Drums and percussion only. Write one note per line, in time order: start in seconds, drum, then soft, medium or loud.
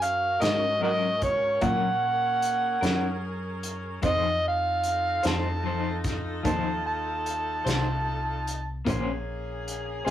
0.02 closed hi-hat medium
0.41 snare medium
0.41 closed hi-hat medium
1.22 kick medium
1.22 closed hi-hat medium
1.61 kick loud
1.61 closed hi-hat medium
2.42 closed hi-hat medium
2.83 snare loud
2.83 closed hi-hat medium
3.63 closed hi-hat medium
4.03 kick loud
4.03 closed hi-hat medium
4.84 closed hi-hat medium
5.23 snare loud
5.23 closed hi-hat medium
6.04 kick medium
6.04 snare soft
6.04 closed hi-hat medium
6.45 kick medium
6.45 closed hi-hat medium
7.26 closed hi-hat medium
7.67 snare loud
7.67 closed hi-hat medium
8.47 closed hi-hat medium
8.87 kick loud
8.87 closed hi-hat medium
9.68 closed hi-hat medium